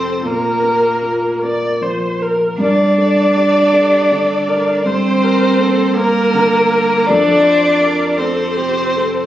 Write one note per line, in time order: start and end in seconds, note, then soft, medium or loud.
0.00 0.21 F2 medium
0.00 0.29 C3 soft
0.00 0.25 C4 medium
0.00 0.29 G4 medium
0.00 0.28 A4 soft
0.00 0.29 A4 medium
0.00 0.28 C5 medium
0.23 2.54 A#2 soft
0.23 1.40 A#3 medium
0.23 1.43 A#4 medium
0.23 1.35 A#4 medium
0.63 1.26 A#4 soft
1.02 1.65 F4 soft
1.42 2.06 A#4 soft
1.42 1.83 D5 medium
1.81 2.44 F3 soft
1.81 2.23 C5 soft
2.21 2.60 A#4 soft
2.58 4.81 G2 medium
2.58 4.82 D4 medium
2.58 4.87 D5 medium
2.98 3.58 A4 soft
3.36 3.96 G4 soft
3.73 4.13 G4 medium
3.73 4.33 A4 medium
4.11 4.71 D3 soft
4.11 4.50 A4 medium
4.48 5.08 A4 soft
4.48 4.88 A#4 medium
4.85 7.02 G2 medium
4.85 5.97 C4 loud
4.85 5.97 C5 medium
4.85 5.25 C5 medium
5.23 5.82 G4 medium
5.23 5.61 A#4 medium
5.59 6.18 A#3 medium
5.59 5.98 A4 medium
5.96 7.09 A#3 loud
5.96 7.06 A#4 medium
5.96 6.56 A#4 medium
5.96 7.08 A#4 medium
6.34 6.92 D3 medium
6.71 7.07 A#4 medium
7.06 9.26 F2 medium
7.06 8.18 D4 loud
7.06 7.44 A4 medium
7.06 8.20 D5 loud
7.43 8.04 A4 medium
7.43 7.80 C5 medium
7.82 8.41 G4 medium
7.82 8.21 A#4 medium
8.17 9.26 C4 loud
8.17 8.80 A4 medium
8.17 8.58 A4 medium
8.17 9.26 C5 medium
8.57 9.21 C3 medium
8.57 8.98 G4 medium
8.96 9.26 A4 soft
8.96 9.26 A4 medium